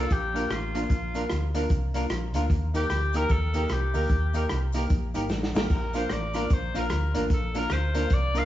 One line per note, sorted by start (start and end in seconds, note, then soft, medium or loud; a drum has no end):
0.00 0.14 A4 loud
0.10 0.45 A#1 medium
0.10 0.53 G4 loud
0.10 muted clean electric guitar stroke soft
0.10 kick loud
0.10 closed hi-hat medium
0.10 cabasa medium
0.34 0.46 A#3 medium
0.34 0.44 D4 medium
0.34 0.47 D4 medium
0.34 0.44 F4 medium
0.34 0.47 F4 medium
0.34 0.44 A#4 medium
0.34 0.47 A#4 medium
0.34 closed hi-hat medium
0.34 cabasa medium
0.50 0.84 A1 loud
0.50 1.56 F4 medium
0.50 cross-stick loud
0.50 closed hi-hat medium
0.50 cabasa medium
0.74 0.86 A#3 loud
0.74 0.84 D4 medium
0.74 0.86 D4 medium
0.74 0.84 F4 medium
0.74 0.87 F4 medium
0.74 0.87 A#4 loud
0.74 0.84 A#4 medium
0.74 closed hi-hat medium
0.74 cabasa medium
0.90 1.24 A#1 loud
0.90 kick loud
0.90 closed hi-hat medium
0.90 cabasa medium
1.14 1.26 A#3 medium
1.14 1.26 D4 medium
1.14 1.24 D4 medium
1.14 1.27 F4 medium
1.14 1.24 F4 medium
1.14 1.27 A#4 loud
1.14 1.25 A#4 medium
1.14 closed hi-hat medium
1.14 cabasa medium
1.29 1.65 D2 medium
1.29 cross-stick loud
1.29 closed hi-hat medium
1.29 cabasa medium
1.54 1.66 A#3 loud
1.54 1.64 D4 medium
1.54 1.66 D4 medium
1.54 1.67 F4 medium
1.54 1.64 F4 medium
1.54 1.67 A#4 loud
1.54 1.65 A#4 medium
1.54 closed hi-hat medium
1.54 cabasa medium
1.69 2.05 C2 medium
1.69 kick loud
1.69 closed hi-hat medium
1.69 cabasa medium
1.94 2.06 A#3 medium
1.94 2.06 D4 medium
1.94 2.04 D4 medium
1.94 2.07 F4 medium
1.94 2.04 F4 medium
1.94 2.07 A#4 loud
1.94 2.04 A#4 medium
1.94 closed hi-hat medium
1.94 cabasa medium
2.10 2.35 A#1 medium
2.10 cross-stick loud
2.10 closed hi-hat medium
2.10 cabasa medium
2.34 2.48 D2 medium
2.34 2.46 A#3 loud
2.34 2.44 D4 medium
2.34 2.46 D4 medium
2.34 2.46 F4 medium
2.34 2.44 F4 medium
2.34 2.47 A#4 loud
2.34 2.44 A#4 medium
2.34 closed hi-hat medium
2.34 cabasa medium
2.50 2.84 D#2 loud
2.50 kick loud
2.50 closed hi-hat medium
2.50 cabasa soft
2.74 2.86 A#3 medium
2.74 2.86 D#4 medium
2.74 2.84 D#4 medium
2.74 2.86 G4 medium
2.74 2.84 G4 medium
2.74 3.18 G4 loud
2.74 2.86 A#4 loud
2.74 2.84 A#4 medium
2.74 closed hi-hat medium
2.74 cabasa medium
2.90 3.24 D2 medium
2.90 cross-stick loud
2.90 closed hi-hat medium
2.90 cabasa medium
3.13 3.26 A#3 medium
3.13 3.26 D#4 medium
3.13 3.24 D#4 medium
3.13 3.27 G4 medium
3.13 3.24 G4 medium
3.13 3.27 A#4 loud
3.13 3.25 A#4 loud
3.13 3.33 A#4 loud
3.13 closed hi-hat medium
3.13 cabasa medium
3.29 3.64 D#2 medium
3.29 3.74 A4 loud
3.29 muted clean electric guitar stroke soft
3.29 kick loud
3.29 closed hi-hat medium
3.29 cabasa medium
3.54 3.66 A#3 medium
3.54 3.66 D#4 medium
3.54 3.64 D#4 medium
3.54 3.66 G4 medium
3.54 3.64 G4 medium
3.54 3.67 A#4 loud
3.54 3.65 A#4 medium
3.54 closed hi-hat medium
3.54 cabasa medium
3.69 3.91 C2 loud
3.69 4.76 G4 medium
3.69 cross-stick loud
3.69 closed hi-hat medium
3.69 cabasa medium
3.94 4.08 D2 loud
3.94 4.06 A#3 medium
3.94 4.03 D#4 medium
3.94 4.06 D#4 medium
3.94 4.06 G4 medium
3.94 4.04 G4 medium
3.94 4.06 A#4 loud
3.94 4.04 A#4 medium
3.94 open hi-hat medium
3.94 cabasa medium
4.09 4.44 D#2 loud
4.09 kick loud
4.09 closed hi-hat medium
4.09 cabasa medium
4.34 4.46 A#3 medium
4.34 4.46 D#4 medium
4.34 4.44 D#4 medium
4.34 4.46 G4 medium
4.34 4.44 G4 medium
4.34 4.46 A#4 loud
4.34 4.45 A#4 loud
4.34 closed hi-hat medium
4.34 cabasa medium
4.49 4.85 C2 medium
4.49 cross-stick loud
4.49 closed hi-hat medium
4.49 cabasa medium
4.73 4.86 A#3 medium
4.73 4.84 D#4 medium
4.73 4.86 D#4 medium
4.73 4.86 G4 medium
4.73 4.84 G4 medium
4.73 4.87 A#4 loud
4.73 4.84 A#4 medium
4.73 closed hi-hat medium
4.73 cabasa medium
4.90 5.12 A#1 medium
4.90 muted clean electric guitar stroke soft
4.90 kick loud
4.90 closed hi-hat medium
4.90 cabasa medium
5.14 5.28 G1 loud
5.14 5.26 A#3 medium
5.14 5.24 D#4 medium
5.14 5.26 D#4 medium
5.14 5.24 G4 medium
5.14 5.27 G4 medium
5.14 5.27 A#4 loud
5.14 5.24 A#4 medium
5.14 closed hi-hat medium
5.14 cabasa medium
5.29 5.52 A1 loud
5.29 snare medium
5.29 cabasa medium
5.43 snare medium
5.55 5.68 A1 loud
5.55 5.66 A#3 loud
5.55 5.66 D#4 medium
5.55 5.64 D#4 medium
5.55 5.67 G4 medium
5.55 5.64 G4 medium
5.55 5.67 A#4 loud
5.55 5.65 A#4 medium
5.55 snare loud
5.55 cabasa medium
5.70 6.04 A#1 medium
5.70 5.99 A#4 medium
5.70 kick loud
5.70 splash medium
5.70 cabasa medium
5.94 6.06 A#3 medium
5.94 6.03 D4 medium
5.94 6.06 D4 medium
5.94 6.04 F4 medium
5.94 6.07 F4 medium
5.94 6.04 A#4 medium
5.94 6.07 A#4 loud
5.94 6.14 C5 medium
5.94 closed hi-hat medium
5.94 cabasa medium
6.09 6.45 A1 medium
6.09 6.55 D5 medium
6.09 cross-stick loud
6.09 closed hi-hat medium
6.09 cabasa medium
6.34 6.46 A#3 medium
6.34 6.43 D4 medium
6.34 6.46 D4 medium
6.34 6.44 F4 medium
6.34 6.47 F4 medium
6.34 6.44 A#4 medium
6.34 6.47 A#4 loud
6.34 cross-stick medium
6.34 closed hi-hat medium
6.34 cabasa medium
6.50 6.72 A#1 medium
6.50 6.81 C5 medium
6.50 muted clean electric guitar stroke soft
6.50 kick loud
6.50 closed hi-hat medium
6.50 cabasa medium
6.74 6.89 A#1 medium
6.74 6.86 A#3 medium
6.74 6.84 D4 medium
6.74 6.86 D4 medium
6.74 6.86 F4 medium
6.74 6.84 F4 medium
6.74 6.87 A#4 loud
6.74 6.84 A#4 medium
6.74 closed hi-hat medium
6.74 cabasa medium
6.79 7.17 A#4 loud
6.90 7.12 D2 medium
6.90 cross-stick loud
6.90 closed hi-hat medium
6.90 cabasa medium
7.14 7.28 A1 loud
7.14 7.26 A#3 medium
7.14 7.24 D4 medium
7.14 7.26 D4 medium
7.14 7.26 F4 medium
7.14 7.24 F4 medium
7.14 7.27 A#4 loud
7.14 7.25 A#4 medium
7.14 closed hi-hat medium
7.14 cabasa medium
7.30 7.65 A#1 loud
7.30 7.60 A4 medium
7.30 kick loud
7.30 closed hi-hat medium
7.30 cabasa soft
7.54 7.66 A#3 medium
7.54 7.66 D4 medium
7.54 7.64 D4 medium
7.54 7.67 F4 medium
7.54 7.64 F4 medium
7.54 7.67 A#4 loud
7.54 7.65 A#4 medium
7.54 closed hi-hat medium
7.54 cabasa medium
7.59 7.74 A#4 loud
7.70 8.04 D2 medium
7.70 8.15 C5 loud
7.70 cross-stick loud
7.70 closed hi-hat medium
7.70 cabasa medium
7.94 8.06 A#3 medium
7.94 8.06 D4 medium
7.94 8.04 D4 medium
7.94 8.06 F4 medium
7.94 8.04 F4 medium
7.94 8.06 A#4 loud
7.94 8.05 A#4 medium
7.94 closed hi-hat medium
7.94 cabasa medium
8.10 8.45 C2 loud
8.10 muted clean electric guitar stroke soft
8.10 kick loud
8.10 closed hi-hat medium
8.10 cabasa medium
8.14 8.40 D5 loud
8.34 8.45 A#3 medium
8.34 8.45 D4 medium
8.34 8.44 D4 medium
8.34 8.45 F4 medium
8.34 8.44 F4 medium
8.34 8.45 A#4 loud
8.34 8.45 A#4 medium
8.34 closed hi-hat medium
8.34 cabasa medium
8.38 8.45 F5 loud